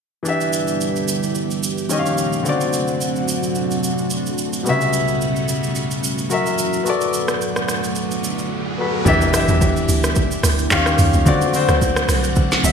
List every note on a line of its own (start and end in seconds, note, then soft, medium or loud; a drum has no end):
0.23 1.89 D3 medium
0.23 1.86 E3 medium
0.23 1.89 G3 medium
0.23 1.89 B3 medium
0.23 1.87 D4 medium
0.23 1.89 E4 medium
0.23 2.43 G4 medium
0.23 shaker medium
0.27 1.88 G4 medium
0.27 1.89 E5 medium
0.41 shaker medium
0.53 shaker medium
0.68 shaker soft
0.81 shaker medium
0.96 shaker soft
1.08 shaker loud
1.23 shaker medium
1.35 shaker medium
1.51 shaker medium
1.63 shaker loud
1.78 shaker soft
1.89 2.45 C#3 medium
1.89 2.45 D#3 medium
1.89 2.45 F3 medium
1.89 2.45 A#3 medium
1.89 2.46 C#4 medium
1.89 2.45 D#4 medium
1.89 2.46 G4 medium
1.89 1.99 D#5 medium
1.89 shaker medium
1.99 2.50 F5 medium
2.06 shaker medium
2.18 shaker medium
2.33 shaker medium
2.43 4.63 C3 medium
2.43 4.60 D3 medium
2.43 4.63 F#3 medium
2.43 4.63 A3 medium
2.43 4.61 C4 medium
2.43 4.63 D4 medium
2.43 9.02 F#4 medium
2.43 shaker medium
2.47 4.62 F#4 medium
2.47 4.63 D5 medium
2.61 shaker soft
2.73 shaker medium
2.88 shaker soft
3.01 shaker medium
3.16 shaker soft
3.28 shaker loud
3.43 shaker medium
3.55 shaker medium
3.71 shaker medium
3.84 shaker loud
3.98 shaker soft
4.10 shaker medium
4.26 shaker medium
4.38 shaker medium
4.53 shaker medium
4.63 6.29 C#2 medium
4.63 4.71 B2 medium
4.63 6.29 B2 medium
4.63 6.27 G3 medium
4.63 6.29 G3 medium
4.63 6.29 A3 medium
4.63 6.28 B3 medium
4.63 6.29 C#4 medium
4.63 shaker medium
4.68 6.29 C#3 medium
4.68 6.28 F#4 medium
4.68 6.29 E5 medium
4.81 shaker medium
4.93 shaker medium
5.08 shaker soft
5.21 shaker medium
5.36 shaker soft
5.48 shaker loud
5.63 shaker medium
5.75 shaker medium
5.91 shaker medium
6.04 shaker loud
6.18 shaker soft
6.30 6.85 E3 medium
6.30 6.85 F#3 medium
6.30 6.85 A#3 medium
6.30 6.85 C#4 medium
6.30 6.84 F#4 medium
6.30 6.86 A#4 medium
6.30 6.87 E5 medium
6.30 shaker medium
6.46 shaker soft
6.58 shaker medium
6.73 shaker medium
6.83 9.04 D3 medium
6.83 9.04 F#3 medium
6.83 9.04 A3 medium
6.83 8.73 B3 medium
6.83 9.04 B3 medium
6.83 8.74 F#4 medium
6.83 riser medium
6.83 shaker medium
6.87 8.75 A4 medium
6.87 8.77 D5 medium
7.01 shaker medium
7.13 shaker medium
7.28 cross-stick medium
7.28 shaker soft
7.42 shaker medium
7.56 cross-stick medium
7.56 shaker soft
7.68 cross-stick medium
7.68 shaker loud
7.84 shaker medium
7.95 shaker medium
8.11 shaker medium
8.24 shaker loud
8.39 shaker soft
8.78 9.06 B3 medium
8.78 9.06 F#4 soft
8.78 9.07 A4 soft
8.78 9.07 B4 medium
9.05 9.44 E2 loud
9.05 9.28 E3 medium
9.05 10.70 E3 medium
9.05 11.24 G3 medium
9.05 10.70 B3 medium
9.05 9.29 D4 medium
9.05 10.70 D4 medium
9.05 10.69 G4 medium
9.05 9.29 G4 medium
9.05 9.30 E5 loud
9.05 kick loud
9.05 impact medium
9.05 low conga medium
9.05 shaker medium
9.21 high bongo medium
9.21 shaker medium
9.33 10.22 E3 medium
9.33 10.22 D4 medium
9.33 10.23 G4 medium
9.33 10.23 E5 medium
9.33 cross-stick medium
9.33 open hi-hat medium
9.33 shaker medium
9.48 9.85 E2 loud
9.48 low bongo medium
9.48 shaker medium
9.61 kick loud
9.61 high bongo medium
9.61 shaker medium
9.77 shaker soft
9.89 10.38 D2 loud
9.89 open hi-hat medium
9.89 shaker loud
10.04 cross-stick medium
10.04 shaker medium
10.16 kick loud
10.16 high bongo soft
10.16 low conga medium
10.16 shaker medium
10.31 shaker medium
10.43 10.68 D2 loud
10.43 cross-stick medium
10.43 open hi-hat medium
10.43 low bongo medium
10.43 low conga medium
10.43 shaker loud
10.59 shaker soft
10.70 10.96 D#2 loud
10.70 11.16 D#3 medium
10.70 11.26 D#3 medium
10.70 11.26 A#3 medium
10.70 11.26 C#4 medium
10.70 11.16 C#4 medium
10.70 11.26 F4 medium
10.70 11.17 G4 medium
10.70 11.17 F5 medium
10.70 kick loud
10.70 clap medium
10.70 high bongo medium
10.70 shaker medium
10.86 cross-stick loud
10.86 shaker medium
10.98 11.12 D#2 medium
10.98 mid tom medium
10.98 open hi-hat medium
10.98 shaker medium
11.13 11.25 C#2 medium
11.13 shaker medium
11.25 11.48 D3 medium
11.25 12.72 D3 medium
11.25 12.72 F#3 medium
11.25 12.72 A3 medium
11.25 11.49 C4 medium
11.25 12.72 C4 medium
11.25 12.72 F#4 medium
11.25 11.49 F#4 medium
11.25 11.50 D5 loud
11.25 kick loud
11.25 low conga medium
11.25 shaker medium
11.41 high bongo medium
11.41 shaker medium
11.53 12.42 D3 medium
11.53 12.42 C4 medium
11.53 12.43 F#4 medium
11.53 12.43 C5 medium
11.53 open hi-hat medium
11.53 shaker medium
11.69 12.05 D2 loud
11.69 cross-stick medium
11.69 low bongo medium
11.69 shaker medium
11.82 kick loud
11.82 high bongo medium
11.82 shaker medium
11.96 cross-stick loud
11.96 shaker soft
12.09 12.58 C2 medium
12.09 cross-stick medium
12.09 open hi-hat medium
12.09 shaker loud
12.24 shaker medium
12.36 kick loud
12.36 high bongo soft
12.36 low conga medium
12.36 shaker medium
12.52 snare medium
12.52 shaker medium
12.64 12.72 B1 medium
12.64 12.72 E5 medium
12.64 open hi-hat medium
12.64 low bongo medium
12.64 low conga medium
12.64 shaker loud